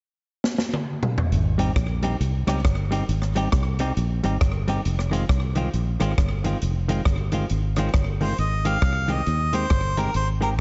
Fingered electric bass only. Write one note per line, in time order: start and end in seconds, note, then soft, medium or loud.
1.32 1.70 G#1 loud
1.76 2.14 A#1 medium
2.21 2.43 C2 medium
2.47 2.62 C#2 medium
2.65 3.02 G1 loud
3.09 3.46 G#1 loud
3.53 3.91 C2 medium
3.97 4.20 A#1 loud
4.24 4.38 G#1 medium
4.42 4.79 G1 medium
4.86 5.23 F1 loud
5.29 5.67 C2 medium
5.74 5.96 A#1 medium
6.01 6.15 G#1 medium
6.18 6.55 G1 medium
6.62 7.00 F1 medium
7.06 7.43 G1 medium
7.51 7.88 G#1 medium
7.94 8.32 G1 loud
8.39 8.76 G#1 loud
8.82 9.20 C2 medium
9.27 9.64 D#2 medium
9.71 10.08 G1 loud
10.15 10.59 G#1 medium